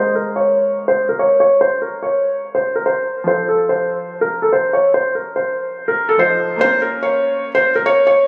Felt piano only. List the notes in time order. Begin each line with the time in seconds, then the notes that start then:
Already playing: C5
0.15 A#4
0.36 C#5
0.88 C5
1.09 A#4
1.19 C#5
1.40 C#5
1.61 C5
1.82 A#4
2.02 C#5
2.55 C5
2.75 A#4
2.86 C5
3.28 C5
3.48 A4
3.69 C5
4.21 A#4
4.42 A4
4.53 C5
4.73 C#5
4.94 C5
5.15 A#4
5.36 C5
5.88 A#4
6.09 A4
6.19 C5
6.61 C5
6.82 A#4
7.03 C#5
7.55 C5
7.75 A#4
7.86 C#5
8.07 C#5